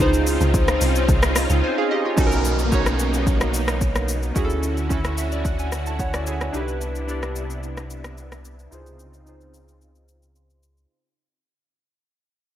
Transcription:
0.00 C#2 C4 C#4 D#4 F4 G#4 C5
0.14 shaker
0.27 open hi-hat, shaker
0.41 C#2, shaker
0.54 kick, shaker
0.68 cross-stick, shaker
0.81 C2, open hi-hat, shaker
0.96 shaker
1.09 C2, kick, shaker
1.23 cross-stick, shaker
1.36 cross-stick, open hi-hat, shaker
1.50 C#2, shaker
1.64 C5 G#5
1.78 G#4 F5
1.91 G4 D#5
2.05 F4 C#5
2.16 B1 A#3 B3 C#4 D#4 F#4 A4, kick, downlifter, shaker
2.27 A#4
2.32 shaker
2.45 shaker
2.59 shaker
2.71 C#4 D#4 F#4 C#5, kick, shaker
2.86 cross-stick, shaker
2.99 shaker
3.14 shaker
3.27 kick, shaker
3.41 cross-stick, shaker
3.54 shaker
3.68 cross-stick, shaker
3.81 kick, shaker
3.95 cross-stick, shaker
4.08 shaker
4.23 shaker
4.35 D2 D3 C#4 E4 F#4 G#4, kick, shaker
4.45 A4
4.50 shaker
4.63 shaker
4.77 shaker
4.89 C#4 E4 F#4 A4, kick, shaker
5.04 cross-stick, shaker
5.18 E5, shaker
5.32 D5, shaker
5.45 F#5, kick, shaker
5.59 G#5, shaker
5.72 cross-stick, shaker
5.86 A5, shaker
5.99 E4 C#5 F#5, kick, shaker
6.14 F#4 D5, cross-stick, shaker
6.27 G#4 E5 G#5, shaker
6.41 E4 C#5, cross-stick, shaker
6.53 C2 C3 B3 D4 D#4 G4 B4, shaker
6.60 E4
6.68 shaker
6.81 shaker
6.95 shaker
7.07 D4 E4 G4 D5, shaker
7.23 cross-stick, shaker
7.36 shaker
7.50 shaker
7.63 shaker
7.77 cross-stick, shaker
7.90 shaker
8.04 cross-stick, shaker
8.18 shaker
8.32 cross-stick, shaker
8.45 shaker
8.59 shaker
8.71 C#2 C#3 C4 D#4 F4 G#4 C5, shaker
8.86 shaker
8.99 shaker
9.14 shaker
9.26 D#4 F4 G#4 C5, shaker
9.41 shaker
9.54 shaker
9.68 shaker
9.81 shaker
9.95 shaker
10.08 shaker
10.22 shaker
10.36 C6, shaker
10.50 shaker
10.63 shaker
10.77 shaker

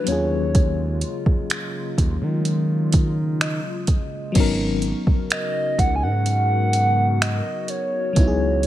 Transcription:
0.04 D#2 C#3 F#3 G#3 A#3 C#4 F4 C#5, closed hi-hat
0.10 F4 G#4
0.55 kick, closed hi-hat
1.01 closed hi-hat
1.26 D#2, kick
1.50 finger snap, closed hi-hat
1.98 D#2, kick, closed hi-hat
2.22 D#3
2.45 closed hi-hat
2.92 kick, closed hi-hat
3.41 D#5, finger snap, closed hi-hat
3.87 kick, closed hi-hat
4.32 G#1 C#3 F#3 B3 F#4 A#4, kick, closed hi-hat, crash
4.36 C#4 D#4
4.40 A#4
4.82 closed hi-hat
5.07 C#2, kick
5.30 D#5, finger snap, closed hi-hat
5.79 C#2 F#5, kick, closed hi-hat
5.96 G#5
6.03 G#2 F#5
6.26 closed hi-hat
6.73 closed hi-hat
7.21 D#5, finger snap, closed hi-hat
7.68 C#5, closed hi-hat
8.13 C#2 E3 F#3 B3 D#4 D#5, kick, closed hi-hat
8.19 E4 F#4
8.28 G#4
8.63 closed hi-hat

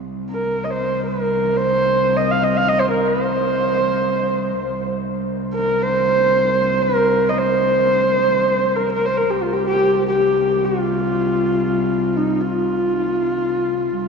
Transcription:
Already playing: C2
0.30 A#4
0.64 D#5
0.70 C5
1.07 A#4
1.56 C5
2.17 D#5
2.31 F5
2.43 D#5
2.57 F5
2.68 D#5
2.79 C5
2.91 A#4
3.07 C5
4.63 C2
5.54 A#4
5.82 C5
6.82 A#4
7.29 D#5
7.38 C5
8.76 A#4
8.92 A#4
9.05 C5
9.17 A#4
9.30 C2 G4
9.42 F4
9.53 G4
9.66 G4
10.08 G4
10.65 F4
12.17 D#4
12.41 F4
13.97 C2

